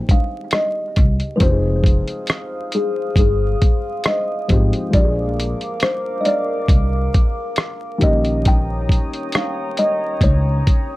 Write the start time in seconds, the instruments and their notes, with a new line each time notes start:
Already playing: upright piano D#3 G3 G#3 C4 G4
0.09 kalimba F5, kick, closed hi-hat
0.51 kalimba D#5, cross-stick, closed hi-hat
0.96 upright bass C2, kick, closed hi-hat
1.20 closed hi-hat
1.36 upright piano F3 G#3, kalimba B4, ambient pad C5 D#6
1.40 upright bass F1, upright piano C4 D#4 G4, kalimba C5, ambient pad F5, kick, closed hi-hat
1.50 upright piano G#4
1.84 kick, closed hi-hat
2.08 closed hi-hat
2.27 cross-stick, closed hi-hat
2.72 kalimba G#4, closed hi-hat
3.16 upright bass G1, kalimba G#4, kick, closed hi-hat
3.62 kick, closed hi-hat
4.04 kalimba D#5, cross-stick, closed hi-hat
4.48 upright bass G#1, upright piano F3 G#3 C4 D#4 G4, kick, closed hi-hat
4.73 closed hi-hat
4.90 upright bass A#1, upright piano F3 G#3 A#3, ambient pad A#4 F5 D6, kalimba D5, kick, closed hi-hat
4.95 upright piano D4 G4
5.04 upright piano G#4
5.40 closed hi-hat
5.61 closed hi-hat
5.80 kalimba C5, cross-stick, closed hi-hat
6.21 kalimba D#5
6.25 kalimba D5, closed hi-hat
6.68 upright bass C2, kick, closed hi-hat
7.14 kick, closed hi-hat
7.56 cross-stick, closed hi-hat
7.98 upright piano D#3 G3 A#3, ambient pad C#5 G5 A#5 D#6, closed hi-hat
8.02 upright bass A#1, upright piano C#4 G4, kalimba D#5, kick
8.25 closed hi-hat
8.45 kalimba G5, kick, closed hi-hat
8.89 kick, closed hi-hat
9.13 closed hi-hat
9.32 kalimba F5, cross-stick, closed hi-hat
9.77 kalimba D#5, closed hi-hat
10.21 upright bass C#2, kalimba C#5, kick, closed hi-hat
10.67 kick, closed hi-hat